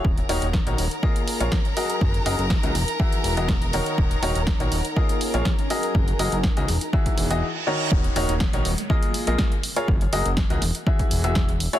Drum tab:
HH |-xox-xox-xox-xox|-xox-xox-xox-xox|-xox-xox-xox-xox|-xox-xox-xox----|
SD |----o-------o---|----o-o-----o---|----o-------o---|----o-o---------|
BD |o---o---o---o---|o---o---o---o---|o---o---o---o---|o---o---oo------|

HH |-xox-xox-xox-xox|-xox-xox-xox-xox|
SD |----o-------o---|----o-o-----o---|
BD |o---o---o---o---|o---o---oo--o---|